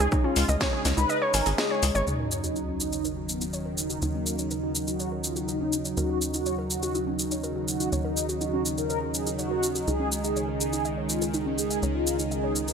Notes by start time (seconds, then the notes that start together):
Already playing: C#3 G#3 D#4
0.00 G#4
0.12 D#4, kick, shaker
0.24 C#4 F4
0.36 C#2, open hi-hat, shaker
0.49 C#2 D#5, shaker
0.61 G#4 C#5, kick, snare, shaker
0.73 G#4
0.85 C#2, snare, open hi-hat, shaker
0.97 C#2 D#4 B4, shaker
1.09 D#5, shaker
1.22 C#5
1.34 G#1 A#4 G#5, open hi-hat, shaker
1.46 G#1 G#4, open hi-hat, shaker
1.58 G#4 D#5, snare, shaker
1.71 C#5
1.83 C#2, open hi-hat, shaker
1.95 G#1 C#5, shaker
2.07 D#2 C#3 D#3 F#3 D#4 C#5, sub drop, shaker
2.19 A#4
2.32 shaker
2.43 D#4 F#4, shaker
2.56 D#4, shaker
2.68 C#4
2.80 D#4, shaker
2.93 C#5, shaker
3.05 A#4, shaker
3.17 F#4
3.29 B3, shaker
3.41 D#4, shaker
3.53 C#5, shaker
3.66 A#4
3.78 D#4, shaker
3.90 F#4, shaker
4.02 D#2 D#4, shaker
4.14 A#3 C#4
4.26 shaker
4.39 C#5, shaker
4.51 D#4 A#4, shaker
4.63 F#4
4.75 shaker
4.88 D#4 F#4, shaker
5.00 C#5, shaker
5.12 A#4
5.24 F4, shaker
5.36 F#4, shaker
5.48 D#4, shaker
5.61 C#4
5.73 shaker
5.85 C#5, shaker
5.97 D#2 F#4 A#4, shaker
6.10 F#4
6.22 shaker
6.34 D#4 F#4, shaker
6.46 C#5, shaker
6.58 A#4
6.70 F#4, shaker
6.83 F#4, shaker
6.95 D#4, shaker
7.07 C#4
7.19 D#4, shaker
7.31 C#5, shaker
7.44 A#4, shaker
7.56 F#4
7.68 F#4, shaker
7.80 D#4, shaker
7.92 D#2 C#5, shaker
8.05 D#4 A#4
8.17 shaker
8.29 F#4, shaker
8.41 D#4 F#4, shaker
8.53 C#4
8.66 shaker
8.78 A#4 C#5, shaker
8.90 A#4, shaker
9.02 F#4
9.14 G#4, shaker
9.27 D#4, shaker
9.39 F#4 C#5, shaker
9.51 A#4
9.63 shaker
9.75 F#4, shaker
9.87 C#2 G#3 D#4 G#4, shaker
10.00 C#4
10.12 shaker
10.24 G#4 D#5, shaker
10.36 C#5, shaker
10.48 G#4
10.60 G#4, shaker
10.73 D#4, shaker
10.85 D#5, shaker
10.97 C#5
11.09 F4, shaker
11.22 G#4, shaker
11.34 D#4, shaker
11.46 C#4
11.58 G#4, shaker
11.71 D#5, shaker
11.83 C#2 C#5, shaker
11.95 F4 G#4
12.07 shaker
12.19 D#4, shaker
12.31 G#4 D#5, shaker
12.44 C#5
12.56 shaker
12.68 G#4 B4, shaker